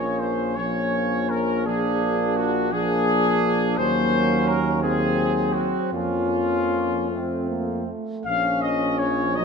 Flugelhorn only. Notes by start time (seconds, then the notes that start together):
Already playing: C#4
0.60 C#4
1.67 D4
2.72 D4
3.79 C#4
4.82 C4
5.95 C#4
7.10 C4
8.27 C#4
9.37 D#4